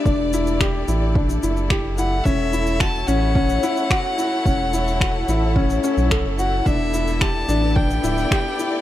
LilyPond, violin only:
\new Staff \with { instrumentName = "Violin" } { \time 4/4 \key e \dorian \tempo 4 = 109 d''4 r2 r8 fis''8 | e''4 a''8 fis''2~ fis''8~ | fis''2. r8 fis''8 | e''4 a''4 g''2 | }